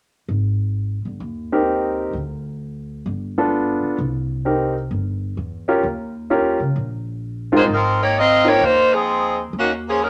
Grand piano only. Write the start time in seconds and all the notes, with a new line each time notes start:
1.52 C4 D#4 G4 A#4
3.38 B3 D4 F4 A4
4.45 C4 D#4 G4 A#4
5.68 C#4 F4 G4 A#4
6.30 C#4 F4 G4 A#4
7.52 G#2 C4 D#4 F4 A#4
8.44 C4 D#4 F4 A#4